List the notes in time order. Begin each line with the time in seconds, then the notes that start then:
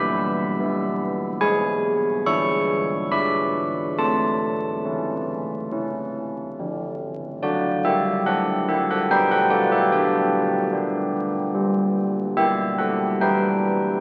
Already playing: B3 E4 B5
0.60 B3 E4
1.41 G#3 G#5
2.26 D4 E4 C#6
3.11 D4 E4 B5
3.98 A3 A5
4.85 C#4 E4
5.72 C#4 E4
6.59 D3
7.42 D4 F#4 D5
7.85 G4 E5
8.26 D4 F#4 A4 F#5
8.69 G4 E5
8.91 A4 F#5
9.11 B3 B4 G5
9.31 A4 F#5
9.50 F#4 D5
9.72 G4 E5
9.92 D4 G4 D5
10.73 D4 G4
11.55 G3
12.37 B3 G4 E5
12.78 A4 F#5
13.21 G3 B3 E4 B4 G5